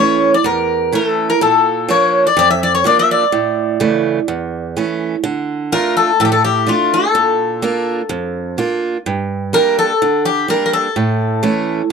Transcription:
Already playing: E3 A3 C#4 C#5
0.34 D5
0.44 E2 A#4
0.92 E3 A3 C#4 A4
1.30 A#4
1.41 A#2 A4
1.89 F3 A#3 D4 C#5
2.27 D5
2.37 F2 D5
2.51 E5
2.63 D5
2.75 C#5
2.84 F3 A#3 D4 D5
2.99 E5
3.11 D5
3.32 A2
3.80 C#3 E3 A3
4.28 E2
4.77 E3 A3 C#4
5.24 D3
5.72 A3 D4 F4 A#4
5.97 A4
6.20 A2 A4
6.25 G4
6.32 A4
6.45 G4
6.67 A3 D4 F4
6.94 A4
7.15 A#2
7.62 A#3 D4 F4
8.09 F2
8.58 A#3 D4 F4
9.06 G2
9.53 G3 A#3 D4 A#4
9.79 A4
10.02 D3
10.25 G4
10.48 G3 A#3 D4 A#4
10.66 A#4
10.73 A4
10.96 A2
11.43 E3 A3 C#4

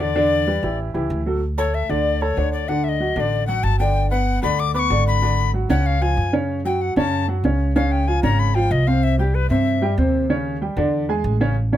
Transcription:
Already playing: E2
0.00 D3 D4 D5
0.16 D3 D4 D5
0.47 G3 G4 B4
0.63 A1 E3 E4 G4
0.94 C#2 E3 E4 G4
1.10 D2
1.26 F#3 F#4 A4
1.58 A3 A4 C#5 A5
1.74 E5
1.89 D2 D3 D4 D5
2.21 A3 A4 C#5 A5
2.37 D2 D3 D4 C#5
2.53 D5
2.69 D3 D4 D5 F#5
2.84 E5
2.89 D#5
3.00 F#3 F#4 F#5
3.16 A1 D3 D4 D5 D#5
3.20 D5
3.47 F#3 F#4 F#5
3.63 G1 A5
3.79 D3 D4 D5 G5
4.11 B3 B4 F#5 B5
4.43 D2 D3 D4 D5 B5
4.60 D6
4.74 B3 B4 B5 D6
4.79 C#6
4.90 G#1 D3 D4 D5
5.07 B5
5.22 D3 D4 D5
5.54 F#3 F#4 F#5
5.69 C#2 C#3 C#4 C#5 F#5
5.86 F5
6.01 F3 F4 F5 G#5
6.17 F#2
6.33 C#3 C#4 C#5
6.65 F#3 F#4 F#5 G5
6.81 F#5
6.96 F#2 C#3 C#4 C#5 A5
7.28 F#3 F#4 F#5
7.44 C#2 C#3 C#4 C#5
7.76 C#3 C#4 C#5 F5
7.92 G5
8.07 F3 F4 F5 G#5
8.23 G#1 C#3 C#4 C#5 A#5
8.39 B5
8.55 F3 F4 F5 G5
8.71 C2 D#5
8.87 C3 C4 C5 F5
9.03 E5
9.19 G3 G4 G5
9.35 B4
9.50 G2 C3 C4 C5 E5
9.82 G3 G4 G5
9.98 D#2 C3 C4 C5
10.29 C#3 C#4 C#5
10.61 G3 G4 G5
10.77 E2 D3 D4 D5
11.09 G#3 G#4 G#5
11.24 A1
11.40 C#3 C#4 C#5
11.72 C#3 C#4 C#5

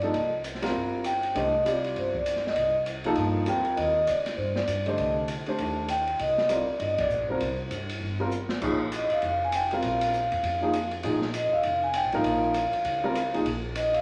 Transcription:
Already playing: G2
0.01 F3 A#3 D#4 A4, ride
0.14 C2, ride
0.44 hi-hat pedal, ride
0.55 snare
0.62 G3 C4 F4 A#4, snare, ride
0.75 G1
1.04 G5, hi-hat pedal, ride
1.23 ride
1.35 C2 A3 D4 G4 C5 D#5, ride
1.65 G3 C4 F4 G4, hi-hat pedal, ride
1.84 ride
1.96 G1 C5, ride
2.14 D5, kick
2.26 hi-hat pedal, ride
2.36 snare
2.47 D#5, snare
2.56 C2, ride
2.86 hi-hat pedal, ride
3.04 F3 A#3 D#4 A4, ride
3.15 G2, ride
3.46 G3 C4 F4 A#4 G5, hi-hat pedal, ride
3.65 ride
3.77 D#2 D#5, ride
4.07 C#2 D5, hi-hat pedal, ride
4.26 snare, ride
4.37 G2 C5
4.54 D5, snare
4.67 G2, hi-hat pedal, ride
4.86 D3 A3 G4 C5 D#5, ride
4.98 C2, ride
5.28 hi-hat pedal, ride
5.46 A3 D4 G4 C5, muted upright bass stroke, ride
5.58 D#2, ride
5.88 G5, hi-hat pedal, ride
6.07 ride
6.19 C2 D#5, ride
6.38 snare
6.49 G3 C4 F4 A#4 D5, hi-hat pedal, ride
6.69 muted upright bass stroke
6.79 G1 D#5, ride
6.97 D5, kick, ride
7.10 A#1, hi-hat pedal
7.28 G3 C4 F4 A#4 C5
7.40 C2, ride
7.71 G2, hi-hat pedal, ride
7.89 ride
8.01 G1
8.20 G3 C4 F4 A#4
8.31 hi-hat pedal
8.49 snare
8.61 A#1 F3 A#3 D#4 G#4, kick, crash
8.92 hi-hat pedal, ride
8.96 D#5
9.10 F5, muted upright bass stroke, ride
9.22 F1, ride
9.26 F5
9.45 G#5
9.52 G5, hi-hat pedal, ride
9.71 G3 C4 F4 A#4 F5, ride
9.82 A#1 F5, ride
10.01 ride
10.13 hi-hat pedal
10.32 F2, ride
10.43 F2, ride
10.61 F3 A#3 D#4 G#4
10.73 hi-hat pedal, ride
10.91 ride
11.03 A#1 F3 A#3 D#4 G#4, ride
11.22 snare
11.34 D#5, hi-hat pedal, ride
11.52 F5, muted upright bass stroke
11.63 F1, ride
11.83 G#5
11.94 G5, hi-hat pedal, ride
12.04 A#1
12.12 G#1 F3 A#3 D#4 A#4 F5, ride
12.23 A#1 F5, ride
12.54 hi-hat pedal, ride
12.72 muted upright bass stroke, ride
12.84 C#2, ride
13.04 G3 C4 F4 A#4
13.15 hi-hat pedal, ride
13.34 F3 A#3 D#4 G#4, ride
13.45 A#1, ride
13.75 D#5, hi-hat pedal, ride
13.94 F5, ride

